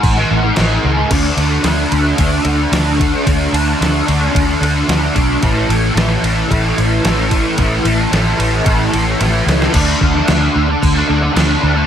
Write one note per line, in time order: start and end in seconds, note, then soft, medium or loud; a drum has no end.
0.00 0.23 A1 loud
0.00 0.16 A2 medium
0.00 kick medium
0.00 crash medium
0.16 0.30 E3 medium
0.16 0.30 A3 medium
0.30 0.50 A1 medium
0.30 0.55 A2 medium
0.30 0.43 E3 medium
0.30 0.41 A3 medium
0.43 muted distorted electric guitar stroke medium
0.56 0.77 A1 medium
0.56 0.82 A2 medium
0.56 0.84 E3 medium
0.56 0.85 A3 medium
0.56 snare loud
0.56 crash medium
0.84 1.03 C#2 medium
0.84 1.09 A2 medium
0.84 0.97 E3 medium
0.84 0.95 A3 medium
0.96 1.09 E3 medium
0.96 1.08 A3 medium
1.10 1.31 D2 medium
1.10 1.62 D3 medium
1.10 1.39 A3 medium
1.10 1.36 D4 loud
1.10 kick loud
1.10 crash loud
1.10 ride medium
1.37 1.57 D2 medium
1.37 1.63 A3 medium
1.37 1.64 D4 medium
1.37 ride medium
1.63 1.84 D2 medium
1.63 2.16 D3 medium
1.63 1.92 A3 medium
1.63 1.91 D4 medium
1.63 snare loud
1.63 ride medium
1.91 2.12 D2 medium
1.91 2.18 A3 medium
1.91 2.17 D4 medium
1.91 ride medium
2.17 2.39 D2 medium
2.17 2.68 D3 medium
2.17 2.46 A3 loud
2.17 2.43 D4 medium
2.17 kick loud
2.17 ride loud
2.44 2.65 D2 medium
2.44 2.71 A3 medium
2.44 2.71 D4 medium
2.44 ride medium
2.70 3.12 D2 medium
2.70 3.24 D3 medium
2.70 3.00 A3 medium
2.70 2.96 D4 medium
2.70 snare loud
2.70 ride medium
2.97 3.25 A3 medium
2.97 3.26 D4 medium
2.97 kick medium
2.97 ride medium
3.25 3.47 D2 medium
3.25 3.78 D3 medium
3.25 3.54 A3 loud
3.25 3.51 D4 loud
3.25 kick loud
3.25 ride medium
3.52 3.73 D2 medium
3.52 3.79 A3 medium
3.52 3.80 D4 medium
3.52 ride medium
3.79 4.00 D2 medium
3.79 4.31 D3 medium
3.79 4.08 A3 medium
3.79 4.05 D4 medium
3.79 snare medium
3.79 ride medium
4.06 4.28 D2 medium
4.06 4.32 A3 medium
4.06 4.33 D4 medium
4.06 ride medium
4.32 4.55 D2 medium
4.32 4.87 D3 medium
4.32 4.62 A3 medium
4.32 4.59 D4 medium
4.32 kick loud
4.36 ride loud
4.60 4.81 D2 medium
4.60 4.89 A3 medium
4.60 4.89 D4 medium
4.60 ride medium
4.88 5.08 D2 medium
4.88 5.40 D3 medium
4.88 5.16 A3 medium
4.88 5.12 D4 medium
4.88 snare loud
4.88 ride medium
5.13 5.36 B1 medium
5.13 5.41 A3 medium
5.13 5.39 D4 medium
5.13 kick medium
5.13 ride medium
5.41 5.63 A1 medium
5.41 5.94 A2 medium
5.41 5.69 E3 medium
5.41 5.67 A3 loud
5.41 kick loud
5.41 ride medium
5.67 5.89 A1 medium
5.67 5.96 E3 medium
5.67 5.96 A3 medium
5.67 ride medium
5.94 6.16 A1 medium
5.94 6.48 A2 medium
5.94 6.24 E3 medium
5.94 6.21 A3 medium
5.94 snare loud
5.94 ride medium
6.22 6.43 A1 medium
6.22 6.49 E3 medium
6.22 6.50 A3 medium
6.22 ride medium
6.49 6.71 A1 medium
6.49 7.02 A2 medium
6.49 6.77 E3 medium
6.49 6.76 A3 medium
6.49 kick loud
6.49 ride medium
6.77 6.98 A1 medium
6.77 7.03 E3 medium
6.77 7.05 A3 medium
6.77 ride medium
7.03 7.45 A1 medium
7.03 7.56 A2 medium
7.03 7.32 E3 medium
7.03 7.31 A3 medium
7.03 snare loud
7.03 ride medium
7.31 7.58 E3 medium
7.31 7.58 A3 medium
7.31 kick medium
7.31 ride medium
7.57 7.78 A1 medium
7.57 8.09 A2 medium
7.57 7.86 E3 medium
7.57 7.83 A3 loud
7.57 kick loud
7.57 ride medium
7.84 8.05 A1 medium
7.84 8.11 E3 medium
7.84 8.11 A3 medium
7.84 ride medium
8.11 8.32 A1 medium
8.11 8.62 A2 medium
8.11 8.39 E3 medium
8.11 8.36 A3 medium
8.11 snare loud
8.11 ride medium
8.37 8.59 A1 medium
8.37 8.64 E3 medium
8.37 8.64 A3 medium
8.37 ride medium
8.63 8.87 A1 medium
8.63 9.18 A2 medium
8.63 8.93 E3 medium
8.63 8.90 A3 medium
8.63 kick loud
8.63 ride medium
8.92 9.13 A1 medium
8.92 9.18 E3 medium
8.92 9.20 A3 medium
8.92 ride medium
9.19 9.40 A1 medium
9.19 9.72 A2 medium
9.19 9.47 E3 medium
9.19 9.45 A3 medium
9.19 snare medium
9.19 ride medium
9.46 9.67 C#2 medium
9.46 9.73 E3 soft
9.46 9.72 A3 medium
9.46 snare medium
9.46 ride medium
9.62 snare medium
9.72 9.93 D2 loud
9.72 10.27 D3 medium
9.72 10.16 A3 medium
9.72 10.14 D4 loud
9.72 kick loud
9.72 crash loud
9.72 crash medium
10.01 10.20 D2 medium
10.01 kick medium
10.14 10.28 A3 medium
10.14 10.30 D4 medium
10.14 snare soft
10.28 10.47 D2 medium
10.28 10.95 D3 medium
10.28 10.68 A3 loud
10.28 10.66 D4 loud
10.28 snare loud
10.28 crash medium
10.55 10.74 D2 medium
10.67 muted distorted electric guitar stroke soft
10.83 11.01 D2 medium
10.83 kick medium
10.83 crash medium
10.93 11.07 A3 medium
10.93 11.07 D4 medium
11.07 11.28 D2 medium
11.07 11.31 D3 medium
11.07 11.21 A3 medium
11.07 11.19 D4 loud
11.20 muted distorted electric guitar stroke medium
11.32 11.54 D2 medium
11.32 11.59 D3 medium
11.32 11.61 A3 medium
11.32 11.61 D4 medium
11.37 snare loud
11.37 crash medium
11.60 11.82 D2 medium
11.60 11.85 D3 medium
11.60 11.76 A3 medium
11.60 11.72 D4 medium
11.74 11.86 A3 medium
11.74 11.87 D4 medium